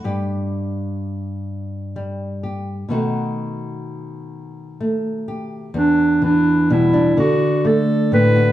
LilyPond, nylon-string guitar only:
\new Staff \with { instrumentName = "Nylon-string guitar" } { \time 6/8 \key e \minor \tempo 4. = 42 << { g'2 g8 g'8 | <dis a dis' fis'>2 a8 g'8 | r4 g16 d'16 r4 c'16 fis'16 | } \\ { g,2. | b,2. | e,8 e8 b,8 d8 a8 a,8 | } >> }